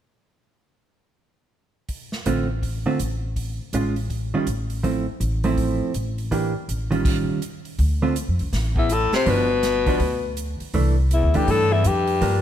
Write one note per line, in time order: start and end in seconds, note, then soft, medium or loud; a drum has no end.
1.89 kick soft
1.89 open hi-hat soft
2.12 snare soft
2.26 2.84 A1 medium
2.26 2.47 D3 soft
2.26 2.47 A3 medium
2.26 2.47 C4 soft
2.26 2.47 F4 medium
2.26 closed hi-hat soft
2.62 kick soft
2.62 open hi-hat soft
2.86 2.98 D3 medium
2.86 2.98 A3 medium
2.86 2.98 C4 medium
2.86 2.99 F4 medium
2.99 3.58 A1 medium
2.99 closed hi-hat soft
3.36 kick soft
3.36 open hi-hat soft
3.73 4.32 A1 medium
3.73 3.94 G#3 soft
3.73 3.95 C#4 soft
3.73 3.95 F4 medium
3.73 closed hi-hat soft
3.96 open hi-hat soft
4.10 kick soft
4.10 open hi-hat soft
4.34 4.46 D#3 medium
4.34 4.46 G3 medium
4.34 4.46 C#4 medium
4.34 4.46 F4 medium
4.47 5.06 A1 medium
4.47 closed hi-hat soft
4.70 open hi-hat soft
4.83 5.04 F3 soft
4.83 5.05 A3 soft
4.83 5.05 C4 medium
4.83 5.05 E4 soft
4.83 kick soft
4.83 open hi-hat soft
5.20 5.79 A1 medium
5.20 closed hi-hat soft
5.44 5.92 F3 medium
5.44 5.92 A3 medium
5.44 5.92 C4 medium
5.44 5.93 E4 medium
5.44 open hi-hat soft
5.57 kick soft
5.57 open hi-hat soft
5.94 6.53 A1 medium
5.94 closed hi-hat soft
6.18 open hi-hat soft
6.31 6.52 E3 soft
6.31 6.53 A#3 medium
6.31 6.53 D4 medium
6.31 6.53 G4 medium
6.31 kick soft
6.31 open hi-hat soft
6.68 7.27 A1 medium
6.68 closed hi-hat soft
6.91 7.39 D#3 medium
6.91 7.39 G3 medium
6.91 7.39 C#4 medium
6.91 7.40 F4 medium
6.91 open hi-hat soft
7.05 kick medium
7.05 open hi-hat soft
7.05 crash medium
7.42 closed hi-hat soft
7.65 open hi-hat soft
7.79 8.25 D2 medium
7.79 kick soft
7.79 open hi-hat soft
8.02 8.15 D3 medium
8.02 8.15 A3 medium
8.02 8.15 C4 medium
8.02 8.15 F4 medium
8.16 closed hi-hat soft
8.28 8.40 F2 medium
8.39 8.52 C#2 medium
8.39 open hi-hat soft
8.53 9.09 A1 medium
8.53 kick soft
8.53 snare soft
8.53 open hi-hat soft
8.75 8.92 E2 medium
8.75 8.95 E4 medium
8.75 kick soft
8.89 9.12 A2 medium
8.89 9.15 A4 medium
8.89 closed hi-hat soft
9.13 9.29 C3 medium
9.13 9.31 C5 medium
9.13 muted upright bass stroke soft
9.13 snare medium
9.13 open hi-hat soft
9.26 9.96 G1 medium
9.26 10.38 B2 medium
9.26 9.47 F3 medium
9.26 9.48 B3 medium
9.26 9.48 D4 medium
9.26 10.39 B4 medium
9.26 kick soft
9.26 open hi-hat soft
9.63 snare soft
9.63 closed hi-hat soft
9.86 9.99 F3 medium
9.86 9.99 B3 medium
9.86 10.00 D4 medium
9.86 kick soft
9.86 open hi-hat soft
10.00 10.56 D2 medium
10.00 kick soft
10.00 open hi-hat soft
10.37 closed hi-hat soft
10.60 muted upright bass stroke soft
10.60 open hi-hat soft
10.74 11.20 C2 medium
10.74 10.95 E3 medium
10.74 10.95 A3 medium
10.74 10.96 D4 medium
10.74 kick soft
10.74 open hi-hat soft
11.11 11.36 E2 medium
11.11 11.38 E4 medium
11.11 closed hi-hat soft
11.23 11.35 D2 medium
11.34 11.47 C#2 medium
11.34 11.50 G2 medium
11.34 11.82 E3 soft
11.34 11.83 A3 medium
11.34 11.83 D4 medium
11.34 11.52 G4 medium
11.34 open hi-hat soft
11.47 11.82 G2 medium
11.47 11.73 A2 medium
11.47 11.74 A4 medium
11.47 kick soft
11.47 open hi-hat soft
11.71 11.86 E2 medium
11.71 11.89 E4 medium
11.84 12.19 F2 medium
11.84 12.42 G2 medium
11.84 12.42 G4 medium
11.84 closed hi-hat soft
12.07 open hi-hat soft
12.21 12.42 G2 medium
12.21 12.42 F3 medium
12.21 12.42 A#3 medium
12.21 12.42 D4 medium
12.21 kick soft
12.21 open hi-hat soft